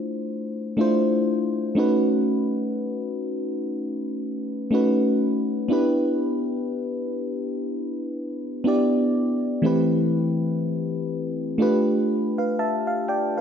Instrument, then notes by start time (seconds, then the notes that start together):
fm electric piano
0.77 A3 D4 E4 F4
0.81 C5
1.75 A3 C#4 D#4 F#4
1.79 B4
4.71 A3 C#4 D#4 F#4
4.75 B4
5.68 B3 D4 E4 G4
5.73 B4
8.64 B3 D4 E4 G4
8.68 D5
9.62 E3 A3 C4 E4 G4
9.66 B4
11.58 A3 D4 F4 G4
11.62 B4
12.38 B4 F5
12.59 E5 A5
12.87 F5
13.08 D5 G5
13.37 F5